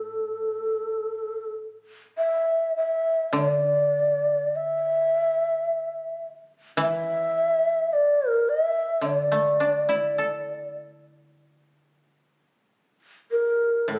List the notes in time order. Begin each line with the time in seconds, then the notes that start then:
Already playing: A2 A4
2.18 E5
2.77 E5
3.33 D3
3.37 D5
4.56 E5
6.77 E3
6.82 E5
7.93 D5
8.30 A#4
8.49 E5
9.01 D3 D5
9.32 A3
9.60 D4
9.89 E4
10.18 A4
13.31 A#4
13.88 A2
13.92 A4